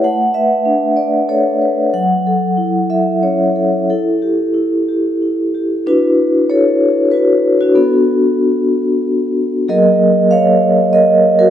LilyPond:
\new Staff \with { instrumentName = "Vibraphone" } { \time 3/4 \key d \major \tempo 4 = 95 << { fis''8 e''4 d''8 cis''4 | fis''4. e''8 cis''4 | a'2~ a'8 r8 | <fis' b'>4 <a' cis''>4 <fis' b'>8. <d' fis'>16~ |
<d' fis'>2. | <ais' dis''>4 <cis'' f''>4 <ais' dis''>8. <fis' ais'>16 | } \\ { a8 b'8 d'8 b'8 a'8 b'8 | fis8 a'8 e'8 a'8 cis'8 a'8 | e'8 g'8 e'8 g'8 e'8 g'8 | <d' e'>2. |
<b d' a'>2. | <fis ais gis'>2. | } >> }